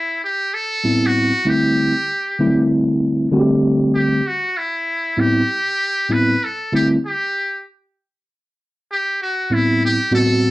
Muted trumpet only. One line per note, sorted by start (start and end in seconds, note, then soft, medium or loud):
0.00 0.23 E4 medium
0.24 0.55 G4 medium
0.54 1.08 A4 loud
1.06 1.50 F#4 loud
1.49 2.71 G4 medium
3.95 4.29 G4 medium
4.27 4.59 F#4 medium
4.57 5.22 E4 medium
5.20 6.14 G4 loud
6.13 6.45 B4 medium
6.44 6.74 A4 medium
6.75 6.88 G4 medium
7.06 7.62 G4 medium
8.92 9.19 G4 medium
9.22 9.55 F#4 medium
9.54 9.83 E4 medium
9.85 10.12 G4 loud
10.15 10.51 A4 loud